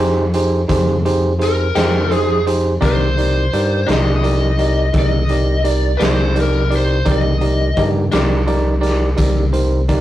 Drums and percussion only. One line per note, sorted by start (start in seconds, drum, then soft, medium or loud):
0.34 closed hi-hat medium
0.69 kick loud
0.69 closed hi-hat medium
1.06 closed hi-hat medium
1.41 closed hi-hat medium
1.76 snare medium
1.76 closed hi-hat medium
2.11 closed hi-hat medium
2.47 closed hi-hat medium
2.82 kick loud
2.82 closed hi-hat medium
3.18 closed hi-hat medium
3.53 closed hi-hat medium
3.88 snare medium
3.88 closed hi-hat medium
4.24 closed hi-hat medium
4.59 closed hi-hat soft
4.94 kick loud
4.94 closed hi-hat medium
5.29 closed hi-hat soft
5.65 closed hi-hat medium
6.00 snare loud
6.00 closed hi-hat medium
6.36 closed hi-hat medium
6.72 closed hi-hat medium
7.06 kick loud
7.06 closed hi-hat medium
7.41 closed hi-hat medium
7.77 kick medium
7.77 closed hi-hat medium
8.12 snare medium
8.12 closed hi-hat medium
8.48 closed hi-hat medium
8.83 snare soft
8.83 closed hi-hat medium
9.18 kick loud
9.18 closed hi-hat medium
9.53 closed hi-hat medium
9.89 kick medium
9.89 closed hi-hat medium